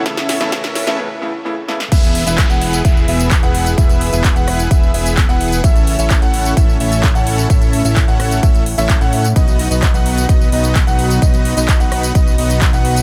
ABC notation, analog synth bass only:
X:1
M:4/4
L:1/16
Q:1/4=129
K:E
V:1 name="Analog synth bass" clef=bass
z16 | E,,,3 E,,,2 E,,,3 z2 E,,,3 E,,,3 | E,,,3 E,,,2 E,,,3 z2 E,,,3 E,,,3 | A,,,3 A,,,2 A,,,3 z2 A,,,3 A,,,3 |
z3 A,,,2 A,,,3 z3 A,,,2 A,,3 | B,,,3 B,,,2 B,,,3 z2 B,,,3 B,,,3 | z3 B,,,2 B,,,3 z2 B,,,3 B,,,3 |]